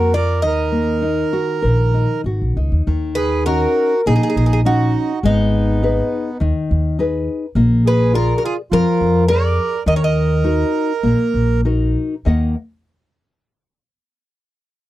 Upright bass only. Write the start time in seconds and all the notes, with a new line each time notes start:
Already playing: F2
0.45 D#2
1.64 A#1
2.24 G#1
2.42 A#1
2.56 C#2
2.72 D#2
2.87 D#2
4.07 A#1
4.36 A#1
5.23 G#1
6.41 D#2
6.71 D#2
7.55 A#1
8.72 F2
9.01 F2
9.86 D#2
11.03 A#1
11.34 A#1
12.26 D#2